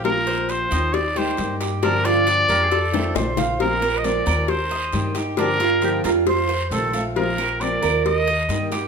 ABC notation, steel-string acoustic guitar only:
X:1
M:4/4
L:1/8
Q:1/4=135
K:Bb
V:1 name="Steel-string acoustic guitar"
[F,B,CF]3 [B,CF] z [G,B,EG] [G,B,G]2 | [D,F,B,DG]3 [F,B,DG] z [E,A,CF] [E,A,CF]2 | [F,B,CF] [B,CF] [F,B,CF] [B,CF] z2 [E,G,B,EG] [B,EG] | [D,F,B,DG] [B,DG] [D,F,B,DG] [B,DG] z2 [C,E,A,CF] [A,CF] |
[F,B,CF] [B,CF] [F,B,CF] [B,CF] z2 [E,G,B,EG] [B,EG] |]